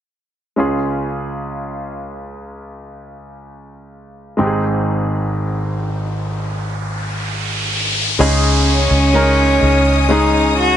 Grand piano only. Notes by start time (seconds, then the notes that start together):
0.56 C#2 C#3 G#3 C#4 F4 G#4
4.37 G#1 G#2 G#3 C4 D#4 G4
4.47 G#4
8.19 C#3 G#3 C#4 D#4 G#4
9.14 G#3 C#4 D#4 A#4
10.09 G#3 C#4 D#4 G#4